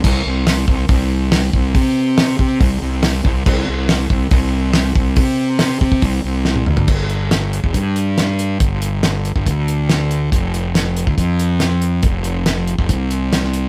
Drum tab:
CC |x---------------|----------------|x---------------|----------------|
HH |----o---o---o---|o---o---o---o---|----o---o---o---|o---o---o-------|
SD |----o-------o---|----o-------o---|----o-------o---|----o-------o---|
T1 |----------------|----------------|----------------|-------------o--|
T2 |----------------|----------------|----------------|--------------o-|
FT |----------------|----------------|----------------|---------------o|
BD |o-----o-o-----o-|o-----o-o-----o-|o-----o-o-----o-|o-----ooo-------|

CC |x---------------|----------------|----------------|----------------|
HH |--x-x-x-x-x-x-x-|x-x-x-x-x-x-x-x-|x-x-x-x-x-x-x-x-|x-x-x-x-x-x-x-x-|
SD |----o-------o---|----o-------o---|----o-------o---|----o-------oo--|
T1 |----------------|----------------|----------------|----------------|
T2 |----------------|----------------|----------------|----------------|
FT |----------------|----------------|----------------|----------------|
BD |o------oo-------|o------oo-------|o------oo-------|o------oo-------|